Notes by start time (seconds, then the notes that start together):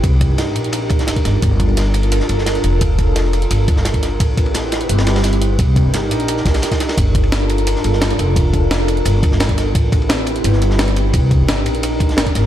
Already playing: G4
0.04 C2 D4 D#4 A#4, kick, closed hi-hat, ride
0.21 kick, closed hi-hat, ride
0.30 G1
0.38 snare, closed hi-hat, ride
0.56 A#1, closed hi-hat, ride
0.64 closed hi-hat
0.73 closed hi-hat, ride
0.89 kick, closed hi-hat, ride
0.99 snare, closed hi-hat
1.07 G1, snare, closed hi-hat, ride
1.16 kick, closed hi-hat
1.25 G1, snare, closed hi-hat, ride
1.42 G1 F4 A4, kick, closed hi-hat, ride
1.60 kick, closed hi-hat, ride
1.68 ride
1.77 snare, closed hi-hat, ride
1.94 closed hi-hat, ride
2.03 closed hi-hat
2.12 closed hi-hat, ride
2.20 snare
2.29 G1, closed hi-hat, ride
2.38 snare
2.46 snare, closed hi-hat, ride
2.55 closed hi-hat
2.64 F1, closed hi-hat, ride
2.81 kick, closed hi-hat, ride
2.99 kick, closed hi-hat, ride
3.16 snare, closed hi-hat, ride
3.33 closed hi-hat, ride
3.42 closed hi-hat
3.51 G1, closed hi-hat, ride
3.68 D2, kick, closed hi-hat, ride
3.76 G1, snare
3.85 snare, closed hi-hat, ride
3.94 kick, closed hi-hat
4.03 snare, closed hi-hat, ride
4.20 A1 C4 E4 G4 B4, kick, closed hi-hat, ride
4.37 kick, closed hi-hat, ride
4.46 ride
4.54 snare, closed hi-hat, ride
4.72 snare, closed hi-hat, ride
4.81 closed hi-hat
4.89 G1, closed hi-hat, ride
4.98 snare, ride
5.07 snare, closed hi-hat, ride
5.16 snare, ride
5.23 snare, closed hi-hat, ride
5.33 closed hi-hat
5.42 closed hi-hat, ride
5.59 C2 D4 D#4 G4 A#4, kick, closed hi-hat, ride
5.76 kick, closed hi-hat, ride
5.85 G1
5.94 snare, closed hi-hat, ride
6.11 A#1, closed hi-hat, ride
6.20 closed hi-hat
6.28 closed hi-hat, ride
6.37 snare
6.45 A#1, kick, snare, closed hi-hat, ride
6.54 snare, closed hi-hat, ride
6.62 snare, closed hi-hat, ride
6.72 kick, snare, closed hi-hat, ride
6.80 snare, closed hi-hat, ride
6.89 snare, ride
6.98 G1 D4 F4 A4 A#4, kick, closed hi-hat, ride
7.15 kick, closed hi-hat, ride
7.23 ride
7.32 snare, closed hi-hat, ride
7.50 closed hi-hat, ride
7.58 closed hi-hat
7.67 closed hi-hat, ride
7.76 snare
7.84 G1, closed hi-hat, ride
7.93 snare
8.01 snare, closed hi-hat, ride
8.11 closed hi-hat
8.19 F1, closed hi-hat, ride
8.36 kick, closed hi-hat, ride
8.53 kick, closed hi-hat, ride
8.71 snare, closed hi-hat, ride
8.88 closed hi-hat, ride
8.97 closed hi-hat
9.05 G1, closed hi-hat, ride
9.23 D2, kick, closed hi-hat, ride
9.32 G1, snare
9.40 snare, closed hi-hat, ride
9.49 kick, closed hi-hat
9.58 snare, closed hi-hat, ride
9.75 A1 C4 E4 G4 B4, kick, closed hi-hat, ride
9.92 kick, closed hi-hat, ride
10.02 ride
10.09 snare, closed hi-hat, ride
10.27 closed hi-hat, ride
10.36 closed hi-hat
10.44 G1, closed hi-hat, ride
10.53 snare
10.62 closed hi-hat, ride
10.71 snare
10.79 snare, closed hi-hat, ride
10.88 closed hi-hat
10.96 closed hi-hat, ride
11.13 C2 D4 D#4 A#4, kick, closed hi-hat, ride
11.31 kick, closed hi-hat, ride
11.40 G1
11.48 snare, closed hi-hat, ride
11.66 A#1, closed hi-hat, ride
11.75 closed hi-hat
11.83 closed hi-hat, ride
12.00 kick, closed hi-hat, ride
12.09 snare, closed hi-hat
12.17 G1, snare, closed hi-hat, ride
12.26 kick, closed hi-hat
12.35 G1, snare, closed hi-hat, ride